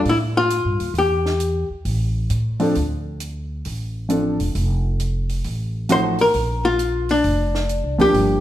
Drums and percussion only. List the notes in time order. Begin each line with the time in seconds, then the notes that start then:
0.05 open hi-hat
0.50 closed hi-hat
0.80 open hi-hat
0.95 open hi-hat
1.26 snare
1.40 closed hi-hat
1.85 open hi-hat
2.30 closed hi-hat
2.60 open hi-hat
2.75 open hi-hat
3.20 closed hi-hat
3.65 open hi-hat
4.10 closed hi-hat
4.40 open hi-hat
4.55 open hi-hat
5.00 closed hi-hat
5.29 open hi-hat
5.44 open hi-hat
5.89 closed hi-hat
6.18 open hi-hat
6.34 open hi-hat
6.79 closed hi-hat
7.09 open hi-hat
7.24 open hi-hat
7.55 snare
7.69 closed hi-hat
7.99 open hi-hat
8.14 open hi-hat